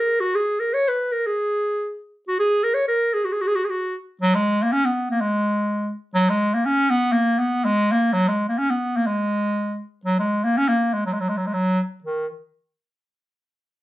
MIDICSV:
0, 0, Header, 1, 2, 480
1, 0, Start_track
1, 0, Tempo, 490998
1, 261, Time_signature, 2, 2, 24, 8
1, 13515, End_track
2, 0, Start_track
2, 0, Title_t, "Clarinet"
2, 0, Program_c, 0, 71
2, 0, Note_on_c, 0, 70, 88
2, 196, Note_on_c, 0, 66, 97
2, 211, Note_off_c, 0, 70, 0
2, 338, Note_on_c, 0, 68, 88
2, 353, Note_off_c, 0, 66, 0
2, 580, Note_on_c, 0, 70, 84
2, 595, Note_off_c, 0, 68, 0
2, 717, Note_on_c, 0, 73, 103
2, 732, Note_off_c, 0, 70, 0
2, 863, Note_on_c, 0, 71, 84
2, 877, Note_off_c, 0, 73, 0
2, 1093, Note_on_c, 0, 70, 79
2, 1108, Note_off_c, 0, 71, 0
2, 1235, Note_on_c, 0, 68, 90
2, 1249, Note_off_c, 0, 70, 0
2, 1952, Note_off_c, 0, 68, 0
2, 2222, Note_on_c, 0, 66, 96
2, 2328, Note_off_c, 0, 66, 0
2, 2339, Note_on_c, 0, 68, 97
2, 2575, Note_on_c, 0, 70, 88
2, 2589, Note_off_c, 0, 68, 0
2, 2679, Note_on_c, 0, 73, 106
2, 2694, Note_off_c, 0, 70, 0
2, 2805, Note_off_c, 0, 73, 0
2, 2810, Note_on_c, 0, 70, 85
2, 3063, Note_on_c, 0, 68, 81
2, 3078, Note_off_c, 0, 70, 0
2, 3172, Note_on_c, 0, 66, 66
2, 3186, Note_off_c, 0, 68, 0
2, 3246, Note_on_c, 0, 68, 78
2, 3260, Note_off_c, 0, 66, 0
2, 3333, Note_on_c, 0, 66, 90
2, 3348, Note_off_c, 0, 68, 0
2, 3391, Note_on_c, 0, 68, 91
2, 3405, Note_off_c, 0, 66, 0
2, 3470, Note_on_c, 0, 66, 83
2, 3485, Note_off_c, 0, 68, 0
2, 3560, Note_on_c, 0, 68, 67
2, 3574, Note_off_c, 0, 66, 0
2, 3614, Note_on_c, 0, 66, 76
2, 3628, Note_off_c, 0, 68, 0
2, 3867, Note_off_c, 0, 66, 0
2, 4117, Note_on_c, 0, 54, 107
2, 4248, Note_on_c, 0, 56, 101
2, 4263, Note_off_c, 0, 54, 0
2, 4522, Note_on_c, 0, 58, 87
2, 4537, Note_off_c, 0, 56, 0
2, 4618, Note_on_c, 0, 61, 109
2, 4632, Note_off_c, 0, 58, 0
2, 4741, Note_on_c, 0, 59, 86
2, 4756, Note_off_c, 0, 61, 0
2, 4969, Note_off_c, 0, 59, 0
2, 4992, Note_on_c, 0, 58, 89
2, 5088, Note_on_c, 0, 56, 99
2, 5103, Note_off_c, 0, 58, 0
2, 5795, Note_off_c, 0, 56, 0
2, 6007, Note_on_c, 0, 54, 109
2, 6152, Note_on_c, 0, 56, 99
2, 6167, Note_off_c, 0, 54, 0
2, 6393, Note_on_c, 0, 58, 93
2, 6408, Note_off_c, 0, 56, 0
2, 6506, Note_on_c, 0, 61, 112
2, 6521, Note_off_c, 0, 58, 0
2, 6743, Note_on_c, 0, 59, 108
2, 6758, Note_off_c, 0, 61, 0
2, 6961, Note_on_c, 0, 58, 99
2, 6975, Note_off_c, 0, 59, 0
2, 7219, Note_on_c, 0, 59, 91
2, 7234, Note_off_c, 0, 58, 0
2, 7473, Note_on_c, 0, 56, 109
2, 7488, Note_off_c, 0, 59, 0
2, 7736, Note_on_c, 0, 58, 92
2, 7751, Note_off_c, 0, 56, 0
2, 7945, Note_on_c, 0, 54, 104
2, 7959, Note_off_c, 0, 58, 0
2, 8094, Note_on_c, 0, 56, 91
2, 8109, Note_off_c, 0, 54, 0
2, 8289, Note_off_c, 0, 56, 0
2, 8295, Note_on_c, 0, 58, 73
2, 8389, Note_on_c, 0, 61, 98
2, 8404, Note_off_c, 0, 58, 0
2, 8503, Note_on_c, 0, 59, 81
2, 8518, Note_off_c, 0, 61, 0
2, 8763, Note_on_c, 0, 58, 87
2, 8778, Note_off_c, 0, 59, 0
2, 8860, Note_on_c, 0, 56, 90
2, 8875, Note_off_c, 0, 58, 0
2, 9597, Note_off_c, 0, 56, 0
2, 9827, Note_on_c, 0, 54, 97
2, 9954, Note_off_c, 0, 54, 0
2, 9960, Note_on_c, 0, 56, 93
2, 10207, Note_on_c, 0, 58, 91
2, 10221, Note_off_c, 0, 56, 0
2, 10334, Note_on_c, 0, 61, 123
2, 10349, Note_off_c, 0, 58, 0
2, 10443, Note_on_c, 0, 58, 91
2, 10458, Note_off_c, 0, 61, 0
2, 10688, Note_on_c, 0, 56, 89
2, 10702, Note_off_c, 0, 58, 0
2, 10805, Note_off_c, 0, 56, 0
2, 10810, Note_on_c, 0, 54, 82
2, 10877, Note_on_c, 0, 56, 79
2, 10892, Note_off_c, 0, 54, 0
2, 10948, Note_on_c, 0, 54, 90
2, 10963, Note_off_c, 0, 56, 0
2, 11034, Note_on_c, 0, 56, 82
2, 11049, Note_off_c, 0, 54, 0
2, 11115, Note_on_c, 0, 54, 73
2, 11129, Note_off_c, 0, 56, 0
2, 11209, Note_on_c, 0, 56, 71
2, 11224, Note_off_c, 0, 54, 0
2, 11274, Note_on_c, 0, 54, 94
2, 11289, Note_off_c, 0, 56, 0
2, 11530, Note_off_c, 0, 54, 0
2, 11766, Note_on_c, 0, 51, 75
2, 11994, Note_off_c, 0, 51, 0
2, 13515, End_track
0, 0, End_of_file